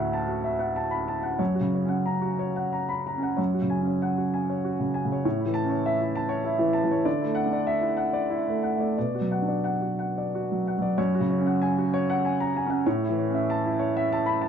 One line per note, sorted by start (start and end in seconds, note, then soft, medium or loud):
0.00 1.36 D2 medium
0.00 1.42 A2 soft
0.00 0.27 F#4 soft
0.00 0.44 E5 medium
0.00 0.21 F#5 soft
0.13 0.37 A5 soft
0.27 0.52 F#4 soft
0.44 0.69 E5 soft
0.59 0.84 F#5 soft
0.76 1.01 A5 soft
0.91 1.07 B5 soft
1.08 1.34 A5 soft
1.23 1.39 F#5 soft
1.39 3.34 F#2 soft
1.39 1.66 C#5 soft
1.55 1.83 F#4 soft
1.60 1.97 C#3 soft
1.75 2.01 C#5 soft
1.85 2.20 C#4 soft
1.85 2.16 F#5 soft
2.06 2.33 A#5 soft
2.21 2.49 F#4 soft
2.39 2.66 C#5 soft
2.56 2.82 F#5 soft
2.73 2.99 A#5 soft
2.89 3.05 B5 soft
3.07 3.32 A#5 soft
3.18 3.39 C#4 soft
3.23 3.38 F#5 soft
3.37 5.21 F#2 soft
3.37 3.63 C#5 soft
3.54 3.79 F#4 soft
3.62 3.94 C#3 soft
3.70 3.95 G#5 soft
3.81 4.14 C#4 soft
3.87 4.11 C#5 soft
4.02 4.27 F#5 soft
4.18 4.42 F#4 soft
4.34 4.58 G#5 soft
4.50 4.73 C#5 soft
4.65 4.89 F#4 soft
4.80 5.03 C#3 soft
4.94 5.19 G#5 soft
5.05 5.25 C#3 soft
5.12 5.24 C#5 soft
5.25 7.02 A2 medium
5.25 5.49 C#5 soft
5.40 5.64 E4 soft
5.45 5.77 E3 soft
5.54 5.79 A5 medium
5.65 5.97 C#4 soft
5.69 5.94 C#5 soft
5.86 6.09 E5 medium
6.01 6.25 E4 soft
6.15 6.39 A5 medium
6.29 6.54 C#5 medium
6.44 6.69 E4 medium
6.59 6.83 E3 soft
6.73 6.98 A5 medium
6.84 7.05 E3 soft
6.91 7.06 C#5 soft
7.05 8.91 D3 medium
7.05 7.29 D5 medium
7.21 7.57 A3 soft
7.21 7.45 E4 soft
7.35 7.60 F#5 medium
7.46 7.79 D4 soft
7.53 7.77 D5 soft
7.67 7.91 E5 medium
7.81 8.07 E4 soft
7.97 8.23 F#5 medium
8.13 8.39 D5 soft
8.30 8.56 E4 soft
8.48 8.73 A3 soft
8.63 8.89 F#5 soft
8.76 8.97 A3 soft
8.76 8.96 D5 soft
8.98 10.95 B2 soft
8.98 9.24 D5 soft
9.15 9.41 F#4 soft
9.21 9.55 F#3 soft
9.31 9.57 F#5 soft
9.42 9.77 D4 soft
9.48 9.74 D5 soft
9.64 9.91 F#5 soft
9.82 10.08 F#4 soft
9.99 10.25 F#5 soft
10.18 10.43 D5 soft
10.35 10.60 F#4 soft
10.52 10.77 F#3 soft
10.67 10.92 F#5 soft
10.78 10.99 F#3 soft
10.78 10.98 D5 soft
10.98 12.82 F#2 medium
10.98 11.23 C#5 medium
11.15 11.39 F#4 soft
11.20 11.53 C#3 medium
11.30 11.55 C#5 soft
11.40 11.73 C#4 soft
11.46 11.70 F#5 soft
11.62 11.86 G#5 medium
11.78 12.02 F#4 medium
11.94 12.17 C#5 medium
12.10 12.33 F#5 medium
12.25 12.49 G#5 medium
12.40 12.55 A#5 medium
12.56 12.80 G#5 medium
12.66 12.87 C#4 medium
12.66 12.86 F#5 medium
12.86 14.48 A2 medium
12.86 13.11 C#5 medium
13.02 13.27 E4 soft
13.09 13.41 E3 soft
13.18 13.43 C#5 soft
13.29 13.61 C#4 soft
13.35 13.58 E5 soft
13.50 13.74 A5 medium
13.65 13.89 E4 medium
13.79 14.04 C#5 medium
13.97 14.20 E5 medium
14.12 14.35 A5 medium
14.26 14.41 B5 medium
14.42 14.48 A5 medium